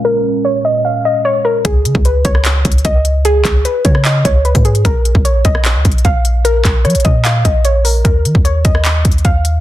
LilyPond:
<<
  \new Staff \with { instrumentName = "Synth pluck" } { \time 4/4 \key des \mixolydian \tempo 4 = 150 bes'4 des''8 ees''8 f''8 ees''8 des''8 bes'8 | aes'4 ces''8 des''4. ees''4 | aes'4 ces''8 des''8 ees''8 des''8 ces''8 aes'8 | bes'4 des''8 ees''4. f''4 |
bes'4 des''8 ees''8 f''8 ees''8 des''8 bes'8 | bes'4 des''8 ees''4. f''4 | }
  \new Staff \with { instrumentName = "Analog synth pad" } { \time 4/4 \key des \mixolydian <bes, aes des' bes'>1 | r1 | r1 | r1 |
r1 | r1 | }
  \new Staff \with { instrumentName = "808-style bass" } { \clef bass \time 4/4 \key des \mixolydian r1 | des,8 des16 des,8. des,4 des,8 des,4~ | des,8 des,8 r8 des4 des,8. aes,8. | bes,,8. bes,,8. bes,,8. des,16 bes,,8 bes,,4~ |
bes,,8 bes,,8 f16 bes,,16 bes,4 bes,,4. | ees,8 ees16 ees,8. ees,4 ees,8 ees,4 | }
  \new DrumStaff \with { instrumentName = "Drums" } \drummode { \time 4/4 r4 r4 r4 r4 | <hh bd>8 hh16 bd16 hh8 <hh bd>16 ss16 \tuplet 3/2 { <hc hh>16 r16 r16 <hh bd>16 hh16 hh16 } <hh bd>8 hh8 | hh8 <hc hh bd>8 hh8 <hh bd>16 ss16 <hc hh>8 <hh bd>8 hh16 <hh bd>16 hh16 hh16 | <hh bd>8 hh16 bd16 hh8 <hh bd>16 ss16 \tuplet 3/2 { <hc hh>16 r16 r16 <hh bd>16 hh16 hh16 } <hh bd>8 hh8 |
hh8 <hc hh bd>8 <hh ss>32 hh32 hh32 hh32 <hh bd>8 <hc hh>8 <hh bd>8 hh8 hho8 | <hh bd>8 hh16 bd16 hh8 <hh bd>16 ss16 \tuplet 3/2 { <hc hh>16 r16 r16 <hh bd>16 hh16 hh16 } <hh bd>8 hh8 | }
>>